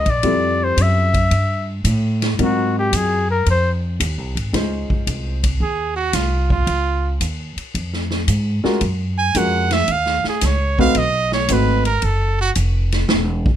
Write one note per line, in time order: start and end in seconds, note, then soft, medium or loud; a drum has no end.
0.00 0.12 D#5 medium
0.06 0.22 A#1 medium
0.06 kick medium
0.06 ride soft
0.10 0.66 D5 medium
0.23 0.75 F2 medium
0.23 1.07 G3 medium
0.23 1.07 C4 medium
0.23 1.07 E4 medium
0.23 1.07 F4 medium
0.23 1.07 A4 medium
0.23 kick soft
0.23 ride medium
0.64 0.84 C5 medium
0.77 1.29 F#2 medium
0.77 kick soft
0.77 hi-hat pedal medium
0.77 ride medium
0.82 1.70 E5 medium
1.14 kick medium
1.14 ride medium
1.31 1.83 G2 medium
1.31 kick soft
1.31 ride medium
1.84 2.37 A2 loud
1.84 kick soft
1.84 hi-hat pedal medium
1.84 ride medium
2.22 snare soft
2.22 ride soft
2.39 2.91 G#2 medium
2.39 3.22 F#3 medium
2.39 3.22 C4 medium
2.39 3.22 D#4 soft
2.39 3.22 F4 medium
2.39 3.22 A#4 medium
2.39 kick soft
2.39 ride medium
2.43 2.75 F#4 medium
2.79 2.98 G4 medium
2.93 3.44 F#2 medium
2.93 3.30 G#4 medium
2.93 kick soft
2.93 hi-hat pedal medium
2.93 ride medium
3.31 3.46 A#4 medium
3.46 3.98 F2 medium
3.46 kick soft
3.46 ride medium
3.51 3.71 C5 loud
4.00 4.18 D#2 medium
4.00 kick soft
4.00 hi-hat pedal medium
4.00 ride medium
4.18 4.35 C2 medium
4.35 4.52 G#1 medium
4.35 ride soft
4.53 4.87 C#2 medium
4.53 5.36 G#3 medium
4.53 5.36 C#4 soft
4.53 5.36 D#4 soft
4.53 5.36 F4 medium
4.53 5.37 C5 medium
4.53 kick soft
4.53 snare soft
4.53 ride medium
4.90 muted upright bass stroke soft
4.90 kick medium
5.07 5.59 C2 medium
5.07 kick soft
5.07 hi-hat pedal medium
5.07 ride medium
5.43 kick soft
5.43 ride medium
5.60 6.12 D#2 medium
5.60 5.96 G#4 medium
5.60 kick soft
5.96 6.16 F#4 medium
6.13 6.66 C2 medium
6.13 6.51 F4 medium
6.13 kick soft
6.13 snare soft
6.13 hi-hat pedal medium
6.13 ride medium
6.50 7.18 F4 medium
6.50 kick medium
6.67 7.19 C#2 medium
6.67 kick soft
6.67 ride medium
7.21 7.55 D#2 medium
7.21 kick soft
7.21 hi-hat pedal medium
7.21 ride medium
7.56 muted upright bass stroke soft
7.56 ride soft
7.74 8.27 F2 medium
7.74 kick soft
7.74 ride medium
7.93 snare soft
8.10 snare soft
8.28 8.62 G#2 medium
8.28 kick soft
8.28 hi-hat pedal medium
8.28 ride medium
8.64 8.80 G#3 medium
8.64 8.80 C#4 medium
8.64 8.80 F4 medium
8.64 8.80 F#4 medium
8.64 8.80 A#4 medium
8.64 muted upright bass stroke soft
8.64 snare soft
8.81 9.34 F#2 medium
8.81 kick soft
8.81 ride medium
9.18 9.39 G#5 loud
9.35 9.87 F2 medium
9.35 9.69 G#3 medium
9.35 9.69 C#4 medium
9.35 9.68 F4 medium
9.35 9.69 F#4 medium
9.35 9.69 A#4 medium
9.35 9.75 F#5 medium
9.35 kick soft
9.35 hi-hat pedal medium
9.35 ride medium
9.71 9.93 E5 loud
9.71 snare medium
9.71 ride soft
9.88 10.23 D#2 medium
9.88 kick soft
9.88 ride medium
9.92 10.27 F5 loud
10.06 snare soft
10.24 muted upright bass stroke soft
10.24 snare soft
10.29 10.48 G#4 medium
10.41 10.94 C#2 medium
10.41 kick soft
10.41 snare soft
10.41 hi-hat pedal medium
10.41 ride medium
10.46 10.80 C#5 medium
10.79 10.94 A3 medium
10.79 10.94 C4 medium
10.79 10.95 D#4 medium
10.79 10.94 F#4 medium
10.79 10.94 B4 medium
10.79 10.99 F5 loud
10.79 kick medium
10.95 11.48 B1 medium
10.95 11.33 D#5 medium
10.95 kick soft
10.95 ride medium
11.32 11.54 C#5 loud
11.32 snare soft
11.48 12.01 G#1 medium
11.48 11.83 A3 medium
11.48 11.83 C4 medium
11.48 11.83 D#4 medium
11.48 11.83 F#4 medium
11.48 11.83 B4 medium
11.48 kick soft
11.48 hi-hat pedal medium
11.48 ride medium
11.53 11.85 B4 medium
11.85 12.06 A#4 medium
11.85 ride soft
12.02 12.55 F#1 medium
12.02 12.41 A4 medium
12.02 kick soft
12.02 ride medium
12.41 12.51 F#4 loud
12.55 13.08 F1 medium
12.55 kick soft
12.55 hi-hat pedal medium
12.55 ride medium
12.92 snare soft
12.92 ride soft
13.09 13.46 E1 medium
13.09 snare medium
13.46 kick medium